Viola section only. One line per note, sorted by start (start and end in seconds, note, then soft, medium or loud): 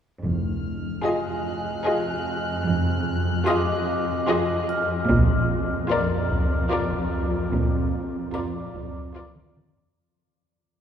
1.06 1.66 F4 soft
1.87 2.47 F4 soft
3.48 4.09 F4 medium
4.29 4.90 F4 medium
5.90 6.51 F4 medium
6.72 7.33 F4 soft
8.34 8.95 F4 soft
9.15 9.76 F4 soft